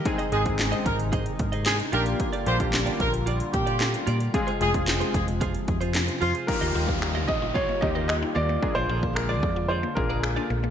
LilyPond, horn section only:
\new Staff \with { instrumentName = "Horn section" } { \time 4/4 \key f \dorian \tempo 4 = 112 r8 aes'16 r8. bes'16 r4 r16 aes'16 r16 bes'16 r16 | r8 c''16 r8. bes'16 r8. g'8. r8. | r8 aes'16 r8. aes'16 r4. r16 f'16 r16 | \key ees \mixolydian r1 |
r1 | }